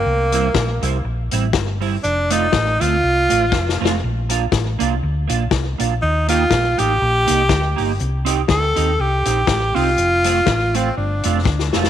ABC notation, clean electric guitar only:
X:1
M:4/4
L:1/8
Q:"Swing" 1/4=121
K:Cdor
V:1 name="Clean electric guitar"
z [G,C=E] z [G,CE] z [G,CE] z [G,CE] | z [A,CF] z [A,CF] z [A,CF] z [A,CF] | z [B,DF] z [B,DF] z [B,DF] z [B,DF] | z [B,EG] z [B,EG] z [B,EG] z [B,EG] |
z [CEG] z [CEG] z [CEG] z [CEG] | z [A,CF] z [A,CF] z [A,CF] z [A,CF] |]